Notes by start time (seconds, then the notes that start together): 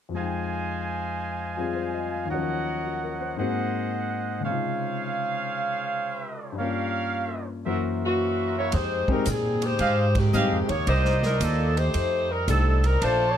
0.09 F2 F3
0.14 G#3 D#4 C5 D#5 F5 G#5
0.20 G5
1.57 F3 G3 C4 F4 G#4
1.75 C5
1.93 D#5
2.12 F5
2.25 D#2 D#3
2.29 F#3 A#4 C#5 D#5 F#5
2.34 F3 C#4
2.85 F#4
3.03 A#4
3.21 C5
3.37 G#2 G#3 A#3 C4 G#4 C5 D#5 F#5
3.41 F#4
4.41 C#3 G#3 G#4 C5 C#5 F5
4.46 C3 D#4
4.52 F4
6.52 G2 G3
6.58 A#3 C#4 G4 A#4 C#5 F5
6.63 F4
7.64 F#2 E3 A#3 F#4 A#4 C5 E5
8.05 E3 A#3 C#4 F#4
8.19 C#6
8.31 C6
8.45 A#5
8.58 A#3 E4 F#4 C#5 F#5
8.72 F2 G#3 D#4 G4 C5, ride
9.08 G3 G#3 C4 D#4 G4 A#4, muted upright bass stroke, kick
9.26 A#2 D#3 G3 C4 G#4, hi-hat pedal, ride
9.62 G#3 D#4 G4 C5, ride
9.79 G#2 G4 G#4 D#5 F5, ride
10.15 D#3 G#3 C4 G4, kick, ride
10.33 G2 G#3 C4 D#4 G4 G#4 D#5 F5, hi-hat pedal
10.52 F2
10.69 D#2 A#3 D#4 G4 C#5, ride
10.87 C2 A#3 D#4 G4 A#4 C5 D5 D#5, ride
11.05 snare
11.23 G3 D4 D#4 A#4, snare
11.40 D#2 F3 A#3 D4 A4, hi-hat pedal, ride
11.77 A3 D#4 G4 C5, ride
11.94 F2, ride
12.31 G3 C4 D#4 A#4
12.48 C2 G3 A3 C4 D4 D#4 G4 A4, hi-hat pedal, ride
12.84 G3 C4 D#4 A#4, ride
13.00 A#1 A3 D4 F4 A4 C5 D5 A5, ride
13.30 C#5